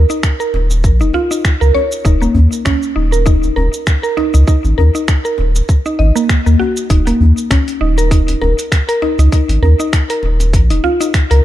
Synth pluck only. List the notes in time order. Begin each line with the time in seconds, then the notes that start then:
0.10 D#4
0.40 A#4
1.01 D#4
1.14 F4
1.31 D#4
1.61 A#4
1.74 C#5
2.05 D#4
2.22 A#3
2.65 C#4
2.96 D#4
3.12 A#4
3.26 D#4
3.56 A#4
4.03 A#4
4.17 D#4
4.34 D#4
4.47 D#4
4.78 A#4
4.95 D#4
5.25 A#4
5.86 D#4
5.99 D#5
6.15 A#3
6.46 A#3
6.59 F#4
6.90 D#4
7.07 A#3
7.51 C#4
7.81 D#4
7.98 A#4
8.11 D#4
8.42 A#4
8.89 A#4
9.02 D#4
9.19 D#4
9.32 D#4
9.63 A#4
9.80 D#4
10.10 A#4
10.70 D#4
10.84 F4
11.00 D#4
11.31 A#4